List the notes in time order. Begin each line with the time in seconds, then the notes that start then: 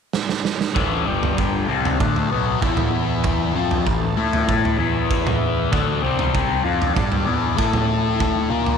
0.13 snare
0.29 snare
0.45 snare
0.61 snare
0.74 A1 A2 E3 A3 E4 A4 C5 E5, kick, floor tom
1.06 G1 G2 D3 G3 D4 G4 D5 G5
1.23 floor tom
1.38 kick
1.67 C2 C3 G3 C4 A4 E5 A5 C6
1.85 floor tom
1.99 D2 D3 A3 D4, kick, mid tom
2.16 floor tom
2.31 B1 B2 F#3 B3
2.62 E2 E3 B3 E4 B4 B5, kick
2.77 floor tom, mid tom
3.24 kick, floor tom
3.54 F2 F3 C4 F4 A4 C5 A5
3.71 floor tom
3.86 A1 A2 E3, kick
4.16 A2 A3 E4 A4
4.33 floor tom
4.49 kick, mid tom
4.65 floor tom
4.78 E2 E3 B3 E4 B4 B5
5.11 kick
5.27 floor tom, mid tom
5.71 D2 D3 A3 D4 A4 D5 A5, kick, floor tom
6.02 C2 C3 G3 C4 G4 C5 G5 C6
6.19 floor tom
6.35 kick
6.63 F2 F3 C4 D4 F4 A4 D5 A5
6.82 floor tom
6.95 G2 G3 D4 G4, kick, mid tom
7.12 floor tom
7.25 E2 E3 B3 E4
7.56 A2 A3 E4 A4 E5, kick
7.73 floor tom, mid tom
8.20 kick, floor tom
8.50 A#2 A#3 D4 F4 A#4 D5 A5
8.66 floor tom